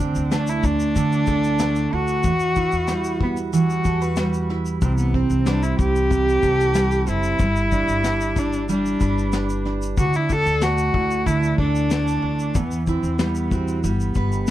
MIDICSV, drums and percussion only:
0, 0, Header, 1, 2, 480
1, 0, Start_track
1, 0, Key_signature, 1, "major"
1, 0, Tempo, 643777
1, 1674, Time_signature, 4, 2, 24, 8
1, 10814, End_track
2, 0, Start_track
2, 0, Title_t, "Drums"
2, 0, Note_on_c, 9, 36, 88
2, 72, Note_off_c, 9, 36, 0
2, 114, Note_on_c, 9, 82, 52
2, 188, Note_off_c, 9, 82, 0
2, 235, Note_on_c, 9, 38, 99
2, 236, Note_on_c, 9, 82, 71
2, 310, Note_off_c, 9, 38, 0
2, 311, Note_off_c, 9, 82, 0
2, 352, Note_on_c, 9, 82, 55
2, 426, Note_off_c, 9, 82, 0
2, 472, Note_on_c, 9, 82, 55
2, 474, Note_on_c, 9, 36, 105
2, 547, Note_off_c, 9, 82, 0
2, 549, Note_off_c, 9, 36, 0
2, 594, Note_on_c, 9, 82, 51
2, 669, Note_off_c, 9, 82, 0
2, 715, Note_on_c, 9, 36, 91
2, 716, Note_on_c, 9, 82, 69
2, 789, Note_off_c, 9, 36, 0
2, 791, Note_off_c, 9, 82, 0
2, 838, Note_on_c, 9, 82, 46
2, 913, Note_off_c, 9, 82, 0
2, 943, Note_on_c, 9, 82, 54
2, 951, Note_on_c, 9, 36, 88
2, 1018, Note_off_c, 9, 82, 0
2, 1026, Note_off_c, 9, 36, 0
2, 1073, Note_on_c, 9, 82, 46
2, 1148, Note_off_c, 9, 82, 0
2, 1186, Note_on_c, 9, 82, 80
2, 1190, Note_on_c, 9, 38, 127
2, 1260, Note_off_c, 9, 82, 0
2, 1264, Note_off_c, 9, 38, 0
2, 1309, Note_on_c, 9, 82, 49
2, 1383, Note_off_c, 9, 82, 0
2, 1548, Note_on_c, 9, 82, 51
2, 1622, Note_off_c, 9, 82, 0
2, 1665, Note_on_c, 9, 82, 74
2, 1672, Note_on_c, 9, 36, 121
2, 1740, Note_off_c, 9, 82, 0
2, 1746, Note_off_c, 9, 36, 0
2, 1787, Note_on_c, 9, 82, 55
2, 1862, Note_off_c, 9, 82, 0
2, 1906, Note_on_c, 9, 82, 54
2, 1913, Note_on_c, 9, 36, 88
2, 1981, Note_off_c, 9, 82, 0
2, 1987, Note_off_c, 9, 36, 0
2, 2026, Note_on_c, 9, 82, 51
2, 2101, Note_off_c, 9, 82, 0
2, 2145, Note_on_c, 9, 38, 98
2, 2146, Note_on_c, 9, 82, 72
2, 2219, Note_off_c, 9, 38, 0
2, 2221, Note_off_c, 9, 82, 0
2, 2268, Note_on_c, 9, 82, 55
2, 2342, Note_off_c, 9, 82, 0
2, 2391, Note_on_c, 9, 36, 98
2, 2465, Note_off_c, 9, 36, 0
2, 2511, Note_on_c, 9, 82, 51
2, 2586, Note_off_c, 9, 82, 0
2, 2636, Note_on_c, 9, 82, 69
2, 2710, Note_off_c, 9, 82, 0
2, 2758, Note_on_c, 9, 82, 45
2, 2833, Note_off_c, 9, 82, 0
2, 2866, Note_on_c, 9, 82, 57
2, 2872, Note_on_c, 9, 36, 85
2, 2941, Note_off_c, 9, 82, 0
2, 2946, Note_off_c, 9, 36, 0
2, 2995, Note_on_c, 9, 82, 45
2, 3070, Note_off_c, 9, 82, 0
2, 3104, Note_on_c, 9, 82, 79
2, 3108, Note_on_c, 9, 38, 123
2, 3178, Note_off_c, 9, 82, 0
2, 3182, Note_off_c, 9, 38, 0
2, 3233, Note_on_c, 9, 82, 47
2, 3308, Note_off_c, 9, 82, 0
2, 3351, Note_on_c, 9, 38, 32
2, 3425, Note_off_c, 9, 38, 0
2, 3473, Note_on_c, 9, 82, 55
2, 3547, Note_off_c, 9, 82, 0
2, 3591, Note_on_c, 9, 82, 78
2, 3593, Note_on_c, 9, 36, 127
2, 3666, Note_off_c, 9, 82, 0
2, 3668, Note_off_c, 9, 36, 0
2, 3711, Note_on_c, 9, 82, 54
2, 3786, Note_off_c, 9, 82, 0
2, 3834, Note_on_c, 9, 36, 88
2, 3909, Note_off_c, 9, 36, 0
2, 3952, Note_on_c, 9, 82, 49
2, 4027, Note_off_c, 9, 82, 0
2, 4072, Note_on_c, 9, 38, 101
2, 4073, Note_on_c, 9, 82, 69
2, 4146, Note_off_c, 9, 38, 0
2, 4147, Note_off_c, 9, 82, 0
2, 4197, Note_on_c, 9, 82, 56
2, 4272, Note_off_c, 9, 82, 0
2, 4316, Note_on_c, 9, 36, 102
2, 4319, Note_on_c, 9, 82, 52
2, 4390, Note_off_c, 9, 36, 0
2, 4393, Note_off_c, 9, 82, 0
2, 4441, Note_on_c, 9, 82, 50
2, 4516, Note_off_c, 9, 82, 0
2, 4556, Note_on_c, 9, 36, 100
2, 4561, Note_on_c, 9, 82, 75
2, 4631, Note_off_c, 9, 36, 0
2, 4636, Note_off_c, 9, 82, 0
2, 4688, Note_on_c, 9, 82, 45
2, 4763, Note_off_c, 9, 82, 0
2, 4792, Note_on_c, 9, 82, 56
2, 4795, Note_on_c, 9, 36, 91
2, 4866, Note_off_c, 9, 82, 0
2, 4869, Note_off_c, 9, 36, 0
2, 4925, Note_on_c, 9, 82, 44
2, 4999, Note_off_c, 9, 82, 0
2, 5031, Note_on_c, 9, 82, 77
2, 5035, Note_on_c, 9, 38, 127
2, 5105, Note_off_c, 9, 82, 0
2, 5110, Note_off_c, 9, 38, 0
2, 5154, Note_on_c, 9, 82, 48
2, 5228, Note_off_c, 9, 82, 0
2, 5272, Note_on_c, 9, 82, 59
2, 5273, Note_on_c, 9, 38, 32
2, 5346, Note_off_c, 9, 82, 0
2, 5347, Note_off_c, 9, 38, 0
2, 5393, Note_on_c, 9, 82, 55
2, 5467, Note_off_c, 9, 82, 0
2, 5511, Note_on_c, 9, 82, 77
2, 5514, Note_on_c, 9, 36, 127
2, 5586, Note_off_c, 9, 82, 0
2, 5588, Note_off_c, 9, 36, 0
2, 5636, Note_on_c, 9, 82, 51
2, 5710, Note_off_c, 9, 82, 0
2, 5754, Note_on_c, 9, 82, 56
2, 5757, Note_on_c, 9, 36, 89
2, 5828, Note_off_c, 9, 82, 0
2, 5831, Note_off_c, 9, 36, 0
2, 5879, Note_on_c, 9, 82, 50
2, 5953, Note_off_c, 9, 82, 0
2, 5995, Note_on_c, 9, 38, 99
2, 5996, Note_on_c, 9, 82, 73
2, 6070, Note_off_c, 9, 38, 0
2, 6071, Note_off_c, 9, 82, 0
2, 6119, Note_on_c, 9, 82, 57
2, 6194, Note_off_c, 9, 82, 0
2, 6236, Note_on_c, 9, 36, 103
2, 6238, Note_on_c, 9, 82, 55
2, 6310, Note_off_c, 9, 36, 0
2, 6312, Note_off_c, 9, 82, 0
2, 6360, Note_on_c, 9, 82, 51
2, 6434, Note_off_c, 9, 82, 0
2, 6481, Note_on_c, 9, 82, 66
2, 6555, Note_off_c, 9, 82, 0
2, 6604, Note_on_c, 9, 82, 42
2, 6678, Note_off_c, 9, 82, 0
2, 6714, Note_on_c, 9, 82, 59
2, 6716, Note_on_c, 9, 36, 92
2, 6788, Note_off_c, 9, 82, 0
2, 6791, Note_off_c, 9, 36, 0
2, 6848, Note_on_c, 9, 82, 42
2, 6922, Note_off_c, 9, 82, 0
2, 6953, Note_on_c, 9, 82, 73
2, 6958, Note_on_c, 9, 38, 118
2, 7028, Note_off_c, 9, 82, 0
2, 7032, Note_off_c, 9, 38, 0
2, 7079, Note_on_c, 9, 82, 49
2, 7154, Note_off_c, 9, 82, 0
2, 7197, Note_on_c, 9, 38, 36
2, 7272, Note_off_c, 9, 38, 0
2, 7323, Note_on_c, 9, 82, 53
2, 7398, Note_off_c, 9, 82, 0
2, 7437, Note_on_c, 9, 36, 122
2, 7437, Note_on_c, 9, 82, 76
2, 7512, Note_off_c, 9, 36, 0
2, 7512, Note_off_c, 9, 82, 0
2, 7556, Note_on_c, 9, 82, 56
2, 7631, Note_off_c, 9, 82, 0
2, 7676, Note_on_c, 9, 82, 55
2, 7679, Note_on_c, 9, 36, 93
2, 7750, Note_off_c, 9, 82, 0
2, 7753, Note_off_c, 9, 36, 0
2, 7802, Note_on_c, 9, 82, 49
2, 7876, Note_off_c, 9, 82, 0
2, 7915, Note_on_c, 9, 38, 103
2, 7916, Note_on_c, 9, 82, 74
2, 7989, Note_off_c, 9, 38, 0
2, 7990, Note_off_c, 9, 82, 0
2, 8037, Note_on_c, 9, 82, 62
2, 8111, Note_off_c, 9, 82, 0
2, 8157, Note_on_c, 9, 36, 101
2, 8232, Note_off_c, 9, 36, 0
2, 8282, Note_on_c, 9, 82, 47
2, 8357, Note_off_c, 9, 82, 0
2, 8399, Note_on_c, 9, 36, 94
2, 8405, Note_on_c, 9, 82, 73
2, 8474, Note_off_c, 9, 36, 0
2, 8480, Note_off_c, 9, 82, 0
2, 8524, Note_on_c, 9, 82, 45
2, 8598, Note_off_c, 9, 82, 0
2, 8636, Note_on_c, 9, 36, 90
2, 8710, Note_off_c, 9, 36, 0
2, 8763, Note_on_c, 9, 82, 45
2, 8838, Note_off_c, 9, 82, 0
2, 8877, Note_on_c, 9, 82, 80
2, 8882, Note_on_c, 9, 38, 127
2, 8952, Note_off_c, 9, 82, 0
2, 8956, Note_off_c, 9, 38, 0
2, 9005, Note_on_c, 9, 82, 47
2, 9079, Note_off_c, 9, 82, 0
2, 9241, Note_on_c, 9, 82, 51
2, 9315, Note_off_c, 9, 82, 0
2, 9357, Note_on_c, 9, 82, 85
2, 9358, Note_on_c, 9, 36, 127
2, 9432, Note_off_c, 9, 82, 0
2, 9433, Note_off_c, 9, 36, 0
2, 9479, Note_on_c, 9, 82, 56
2, 9553, Note_off_c, 9, 82, 0
2, 9595, Note_on_c, 9, 82, 54
2, 9599, Note_on_c, 9, 36, 89
2, 9670, Note_off_c, 9, 82, 0
2, 9673, Note_off_c, 9, 36, 0
2, 9718, Note_on_c, 9, 82, 48
2, 9792, Note_off_c, 9, 82, 0
2, 9835, Note_on_c, 9, 38, 106
2, 9836, Note_on_c, 9, 82, 74
2, 9909, Note_off_c, 9, 38, 0
2, 9910, Note_off_c, 9, 82, 0
2, 9955, Note_on_c, 9, 82, 57
2, 10029, Note_off_c, 9, 82, 0
2, 10076, Note_on_c, 9, 36, 113
2, 10077, Note_on_c, 9, 82, 54
2, 10151, Note_off_c, 9, 36, 0
2, 10152, Note_off_c, 9, 82, 0
2, 10199, Note_on_c, 9, 82, 50
2, 10274, Note_off_c, 9, 82, 0
2, 10319, Note_on_c, 9, 82, 72
2, 10393, Note_off_c, 9, 82, 0
2, 10441, Note_on_c, 9, 82, 46
2, 10515, Note_off_c, 9, 82, 0
2, 10548, Note_on_c, 9, 82, 49
2, 10555, Note_on_c, 9, 36, 92
2, 10622, Note_off_c, 9, 82, 0
2, 10629, Note_off_c, 9, 36, 0
2, 10678, Note_on_c, 9, 82, 44
2, 10752, Note_off_c, 9, 82, 0
2, 10790, Note_on_c, 9, 82, 78
2, 10814, Note_off_c, 9, 82, 0
2, 10814, End_track
0, 0, End_of_file